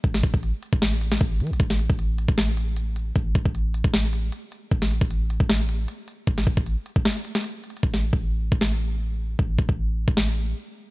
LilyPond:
<<
  \new Staff \with { instrumentName = "808-style bass" } { \clef bass \time 4/4 \key c \major \tempo 4 = 154 a,,8 a,,16 a,,8 r8 a,,4~ a,,16 a,,8 e16 a,,16 | a,,8. a,,4 a,,2~ a,,16 | a,,8 a,,16 a,,4 a,,4~ a,,16 r4 | a,,8. a,,4 a,,4~ a,,16 r4 |
a,,8 a,,16 a,,8 r8 a,,16 r2 | a,,8. a,,4 a,,2~ a,,16 | a,,8 a,,16 a,,4 a,,4~ a,,16 r4 | }
  \new DrumStaff \with { instrumentName = "Drums" } \drummode { \time 4/4 <hh bd>16 sn16 <hh bd>16 bd16 hh8 hh16 bd16 <hh sn>8 hh16 sn16 \tuplet 3/2 { <hh bd>16 r16 r16 hh16 hh16 hh16 } | <hh bd>16 sn16 hh16 bd16 hh8 hh16 bd16 <hh sn>8 hh8 hh8 hh8 | <hh bd>8 <hh bd>16 bd16 hh8 hh16 bd16 <hh sn>8 hh8 hh8 hh8 | <hh bd>16 sn16 hh16 bd16 hh8 hh16 bd16 <hh sn>8 hh8 hh8 hh8 |
<hh bd>16 sn16 <hh bd>16 bd16 hh8 hh16 bd16 <hh sn>8 hh16 sn16 \tuplet 3/2 { hh16 r16 r16 hh16 hh16 hh16 } | bd16 sn8 bd16 r8. bd16 sn4 r4 | bd8 bd16 bd16 r8. bd16 sn4 r4 | }
>>